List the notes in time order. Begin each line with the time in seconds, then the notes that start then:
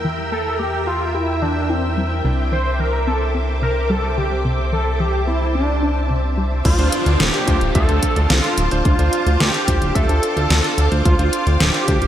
Already playing: E2 A#3 E4 G4 A#4 E5 G5 E6
0.04 E3
0.32 A#3 A4
0.59 A#3 G4
0.87 F4 G4
1.14 E4 G4
1.42 E3 D4
1.70 C4 E4
1.97 G3
2.24 C2 C3 C4 D4 E4 C5 D6
2.52 E3 C5
2.79 E3 A#4
3.07 C4 A4
3.35 C4
3.62 C3 A#4
3.90 G3 A4
4.17 D3 G4
4.45 C3 A5
4.72 E3 A4
5.00 E3 G4
5.27 C4 E4
5.55 C4 D4
5.83 D4
6.10 C3 C4
6.37 G3
6.65 D2 D4 F4 C5 F5 A5 D6, kick, closed hi-hat, crash, downlifter
6.79 D2 D4 F4 C5, closed hi-hat
6.92 closed hi-hat
7.06 D2 D4 F4 C5, closed hi-hat
7.20 D1 G4, snare, closed hi-hat
7.34 D4 F4 C5, closed hi-hat
7.48 D2 D4 F4 C5, kick, closed hi-hat
7.61 D1, closed hi-hat
7.75 D2 D4 F4 A4 E5, kick, closed hi-hat
7.89 D2 D4 F4 C5, closed hi-hat
8.03 kick, closed hi-hat
8.16 D2 D4 F4 A4, closed hi-hat
8.30 C2 F4, snare, closed hi-hat
8.44 D4 F4 A4, closed hi-hat
8.58 D1, closed hi-hat
8.71 D1 D4 F4 C5, closed hi-hat
8.85 D2 D4 F4 C5, kick, closed hi-hat
8.99 D2 D4 F4 C5, closed hi-hat
9.13 closed hi-hat
9.26 D2 D4 F4 C5, closed hi-hat
9.40 D2 G4, snare, closed hi-hat
9.54 D4 F4 C5, closed hi-hat
9.68 D2 D4 F4 C5, kick, closed hi-hat
9.82 D1, closed hi-hat
9.95 D2 D4 F4 A4 E5, kick, closed hi-hat
10.09 D2 D4 F4 C5, closed hi-hat
10.23 closed hi-hat
10.37 D2 D4 F4 A4, closed hi-hat
10.50 D2 A4, snare, closed hi-hat
10.64 D4 F4 A4, closed hi-hat
10.78 D2, closed hi-hat
10.92 D2 D4 F4 C5, closed hi-hat
11.05 D2 D4 F4 C5 G5, kick, closed hi-hat
11.19 D2 D4 F4 C5, closed hi-hat
11.33 closed hi-hat
11.47 D2 D4 F4 C5, closed hi-hat
11.60 D1 G4, snare, closed hi-hat
11.74 D4 F4 C5, closed hi-hat
11.88 D2 D4 F4 C5, kick, closed hi-hat
12.02 D1, closed hi-hat